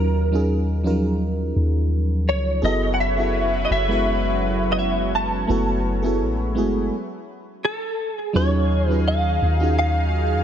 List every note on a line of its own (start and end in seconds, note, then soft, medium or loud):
0.00 1.52 D#2 loud
0.00 0.20 F#3 medium
0.00 0.33 C#4 medium
0.00 0.33 D#4 medium
0.00 0.34 F4 medium
0.00 2.65 F#4 medium
0.00 0.45 A#4 medium
0.00 0.87 A#4 loud
0.32 0.74 F#3 medium
0.32 0.74 C#4 medium
0.32 0.74 D#4 medium
0.32 0.75 F4 medium
0.32 0.76 G#4 loud
0.83 0.91 F3 medium
0.83 1.97 C#4 medium
0.83 1.97 D#4 medium
0.83 1.98 F4 medium
0.83 1.98 A#4 loud
0.90 2.00 F#3 medium
1.56 2.29 D#2 loud
2.28 2.62 C#2 loud
2.28 2.61 C#5 medium
2.62 3.66 F#1 loud
2.62 6.88 F#3 medium
2.62 3.06 B3 medium
2.62 6.88 C#4 medium
2.62 6.88 E4 medium
2.62 3.06 E4 medium
2.62 6.88 F#4 medium
2.62 3.07 F#4 medium
2.62 3.05 G#4 medium
2.62 3.07 A4 loud
2.62 6.88 B4 medium
2.62 6.88 C#5 medium
2.62 2.93 D#5 medium
2.94 3.00 F#5 medium
3.00 3.64 E5 medium
3.17 3.73 B3 medium
3.17 3.73 E4 medium
3.17 3.74 F#4 medium
3.17 3.73 G#4 medium
3.17 3.74 A4 medium
3.65 3.71 D#5 medium
3.71 5.45 F#1 loud
3.71 4.72 E5 medium
3.88 5.01 G#3 medium
3.88 5.01 B3 medium
3.88 5.02 E4 medium
3.88 5.02 F#4 medium
3.88 5.03 B4 medium
4.72 4.78 D#5 medium
4.79 5.11 E5 medium
5.15 6.17 A5 loud
5.47 6.22 F#1 loud
5.47 5.91 A3 medium
5.47 5.91 B3 medium
5.47 5.92 E4 medium
5.47 5.92 F#4 medium
5.47 5.93 A4 loud
6.03 6.45 B3 medium
6.03 6.46 E4 medium
6.03 6.46 F#4 medium
6.03 6.45 G#4 medium
6.03 6.47 A4 medium
6.21 6.58 A1 loud
6.55 6.90 F#1 medium
6.55 6.91 G#3 medium
6.55 6.92 B3 medium
6.55 6.92 E4 medium
6.55 6.93 F#4 medium
6.55 6.93 G#4 loud
7.65 8.16 A4 medium
8.16 8.38 G#4 medium
8.33 9.38 D#2 loud
8.33 10.44 D#3 medium
8.33 8.77 F#3 loud
8.33 8.77 C#4 medium
8.33 10.44 C#4 medium
8.33 8.77 D#4 medium
8.33 10.44 D#4 medium
8.33 8.78 F4 medium
8.33 10.44 G#4 medium
8.33 8.78 G#4 loud
8.33 8.90 C#5 loud
8.33 10.44 F5 medium
8.88 9.44 F#3 medium
8.88 9.44 C#4 medium
8.88 9.45 D#4 medium
8.88 9.45 F4 medium
8.88 9.46 G#4 medium
8.88 9.07 B4 loud
9.08 9.74 F5 loud
9.42 10.35 D#2 loud
9.60 10.44 C#4 medium
9.60 10.44 D#4 medium
9.60 10.44 F4 medium
9.60 10.44 F#4 medium
9.60 10.44 G#4 medium
9.79 10.44 F5 loud
10.33 10.44 F2 medium